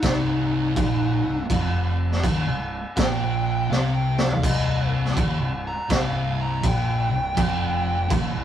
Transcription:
Already playing: lead electric guitar D#4
0.02 fingered electric bass C1, distorted electric guitar C2, kick, snare, crash
0.76 fingered electric bass A#1, distorted electric guitar A#2, kick, crash
1.24 fingered electric bass C1, distorted electric guitar C2
1.49 fingered electric bass F1, distorted electric guitar F2, kick, crash
2.12 snare
2.23 fingered electric bass D#1, distorted electric guitar D#2, kick, crash
2.46 fingered electric bass C1, distorted electric guitar C2
2.96 fingered electric bass A#1, distorted electric guitar A#2, lead electric guitar G5, kick, snare, crash
3.70 fingered electric bass C2, distorted electric guitar C3, lead electric guitar F5, snare
3.94 lead electric guitar G5
4.18 lead electric guitar F5, snare
4.31 floor tom
4.44 fingered electric bass C1, distorted electric guitar C2, lead electric guitar D#5, kick, crash
5.05 snare
5.17 fingered electric bass D#1, distorted electric guitar D#2, kick, crash
5.39 fingered electric bass C1, distorted electric guitar C2
5.67 lead electric guitar A#5
5.90 fingered electric bass C1, distorted electric guitar C2, lead electric guitar F5, kick, snare, crash
6.41 lead electric guitar A#5
6.63 fingered electric bass A#1, distorted electric guitar A#2, lead electric guitar G5, kick, crash
7.10 fingered electric bass C1, distorted electric guitar C2
7.37 fingered electric bass F1, distorted electric guitar F2, kick, crash
8.10 fingered electric bass D#1, distorted electric guitar D#2, kick, crash
8.34 fingered electric bass C1, distorted electric guitar C2

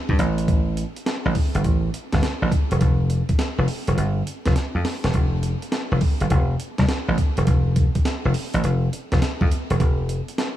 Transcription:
0.09 slap bass G2, kick
0.19 slap bass A1, closed hi-hat
0.38 closed hi-hat
0.48 kick, closed hi-hat
0.77 closed hi-hat
0.96 closed hi-hat
1.06 snare, closed hi-hat
1.25 slap bass A1
1.35 kick, open hi-hat
1.55 slap bass G1, closed hi-hat
1.64 slap bass A1, kick, closed hi-hat
1.94 closed hi-hat
2.12 slap bass G1, kick, snare, closed hi-hat
2.23 muted slap bass stroke, snare, closed hi-hat
2.42 slap bass A1
2.52 kick, closed hi-hat
2.71 slap bass E1, closed hi-hat
2.81 slap bass F1, kick, closed hi-hat
3.10 closed hi-hat
3.29 kick, closed hi-hat
3.39 snare, closed hi-hat
3.58 slap bass F1
3.68 open hi-hat
3.87 slap bass E1, closed hi-hat
3.97 slap bass G1, closed hi-hat
4.27 closed hi-hat
4.46 slap bass F1, kick, snare, closed hi-hat
4.56 snare, closed hi-hat
4.75 slap bass F2
4.85 snare, open hi-hat
5.04 slap bass E1, snare, closed hi-hat
5.14 slap bass F1, kick, closed hi-hat
5.43 closed hi-hat
5.62 closed hi-hat
5.72 snare, closed hi-hat
5.92 slap bass F1
6.01 kick, open hi-hat
6.20 slap bass G1, closed hi-hat
6.30 slap bass F1, kick, closed hi-hat
6.60 closed hi-hat
6.78 slap bass C2, kick, snare, closed hi-hat
6.89 muted slap bass stroke, snare, closed hi-hat
7.08 slap bass A1
7.18 kick, closed hi-hat
7.37 slap bass E1, closed hi-hat
7.47 slap bass F1, kick, closed hi-hat
7.76 kick, closed hi-hat
7.95 kick, closed hi-hat
8.05 snare, closed hi-hat
8.25 slap bass F1
8.34 open hi-hat
8.54 slap bass A1, closed hi-hat
8.64 slap bass F1, closed hi-hat
8.93 closed hi-hat
9.12 slap bass F1, kick, snare, closed hi-hat
9.22 snare, closed hi-hat
9.41 slap bass F2, kick
9.51 closed hi-hat
9.70 slap bass E1, closed hi-hat
9.80 slap bass F1, kick, closed hi-hat
10.09 closed hi-hat
10.28 closed hi-hat
10.38 snare, closed hi-hat

